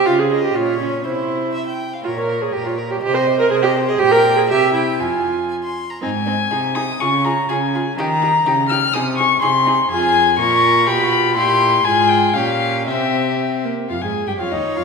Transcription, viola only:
X:1
M:2/4
L:1/16
Q:1/4=122
K:Fm
V:1 name="Viola"
F A2 G F2 D2 | =E6 z2 | F B2 A G F2 G | G c2 B A G2 A |
G B2 A G2 =E2 | F6 z2 | [K:Ab] C2 C2 E2 E2 | F2 F2 F2 F2 |
E2 E2 E2 E2 | E2 E2 E2 E2 | [K:Fm] F4 F4 | F4 =E4 |
F4 D4 | C4 C2 B,2 | F A2 G F E2 F |]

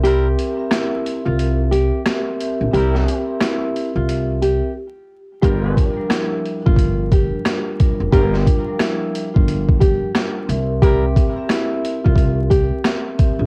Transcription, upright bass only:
X:1
M:4/4
L:1/16
Q:"Swing 16ths" 1/4=89
K:Cmix
V:1 name="Upright bass" clef=bass
C,,2 z4 z C,,4 z4 B,,, | C,,2 z4 z C,,4 z4 z | G,,,2 z4 z G,,,4 z4 F,,, | G,,,2 z4 z G,,,4 z3 C,,2- |
C,,2 z4 z C,,4 z4 B,,, |]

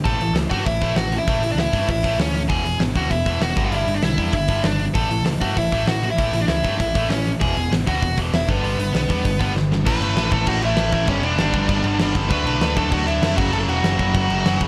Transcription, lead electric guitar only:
X:1
M:4/4
L:1/16
Q:1/4=196
K:Amix
V:1 name="Lead electric guitar"
[Aa]4 z2 [Ff]2 [Ee]4 [Ff]3 [Ee]- | [Ee]3 [Dd] [Ee]4 [Ee]4 [Cc]3 z | [^G^g]4 z2 [Ff]2 [Ee]4 [Ff]3 [Ee]- | [Ee]3 [Dd] [Ee]4 [Ee]4 [Dd]3 z |
[Aa]4 z2 [Ff]2 [Ee]4 [Ff]3 [Ee]- | [Ee]3 [Dd] [Ee]4 [Ee]4 [Cc]3 z | [^G^g]4 z2 [Ff]4 z2 [Ee]2 [B,B]2- | [B,B]12 z4 |
[Bb]6 [Aa]2 [Ff]2 [Ee]4 [Ee]2 | [Cc]2 [Dd]12 z2 | [Bb]6 [Aa]2 [Ff]2 [Ee]4 [Ff]2 | [Aa]2 [Ff]12 z2 |]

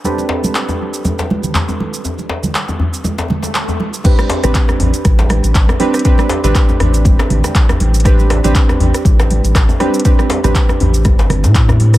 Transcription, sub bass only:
X:1
M:4/4
L:1/16
Q:"Swing 16ths" 1/4=120
K:Am
V:1 name="Sub bass" clef=bass
z16 | z16 | z3 A,,, z2 A,,, z A,,,3 A,,, A,,, z3 | z3 A,,, z2 A,,,2 G,,, z A,,, z3 A,,,2- |
A,,,3 A,,, z2 A,,, z A,,,3 A,,, A,,, z3 | z3 A,,, z2 A,,,2 G,,,3 A,,4- A,, |]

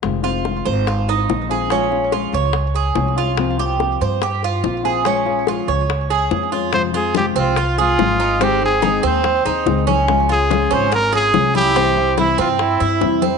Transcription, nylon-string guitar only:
X:1
M:4/4
L:1/8
Q:1/4=143
K:Fm
V:1 name="Nylon-string guitar"
[C,E,A,CF] [E,A,CF] [E,A,CF]2 z2 [E,A,CF] [E,A,CF] | [F,A,DF] [A,DF] [F,A,DF]2 z2 [F,A,DF] [A,DF] | [C,F,B,CF] [F,B,CF] [F,B,CF]2 z2 [F,B,CF] [F,B,CF] | [F,A,DF] [A,DF] [F,A,DF]2 z2 [F,A,DF] [A,DF] |
[C,F,A,CF] [A,CF] [C,F,A,CF]2 z [A,CF] [C,F,A,CF] [A,CF] | [E,A,CEA] [CEA] [E,A,CEA]2 z [CEA] [E,A,CEA] [CEA] | [D,F,A,DF] [A,DF] [D,F,A,DF]2 z [A,DF] [D,F,A,DF] [A,DF] | [C,=E,G,C=E] [G,CE] [C,E,G,CE]2 z [G,CE] [C,E,G,CE] [G,CE] |]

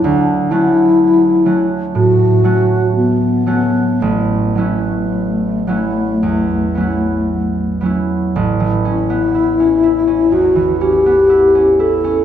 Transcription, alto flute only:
X:1
M:4/4
L:1/8
Q:1/4=60
K:A
V:1 name="Alto flute"
D E2 z F2 B,2 | A,6- A, z | z E3 F =G2 A |]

